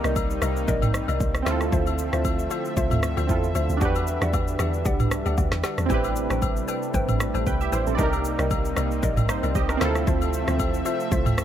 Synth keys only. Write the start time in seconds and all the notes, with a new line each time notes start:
Already playing: D#4 G4 A#4 D5
1.42 C4 E4
1.48 F4 A4
3.27 C4 E4 F4 A4
3.77 D4 F#4
3.82 G4 B4
5.86 C4 E4
5.91 G4 B4
7.47 B4 G5
7.61 G4 E5
7.73 E4 C5
7.87 C4 A4
7.95 D#4 D5
8.00 G4 A#4
9.29 D#4 C5
9.55 G4 D#5
9.70 D4 A#4
9.77 C4 E4
9.82 F4 A4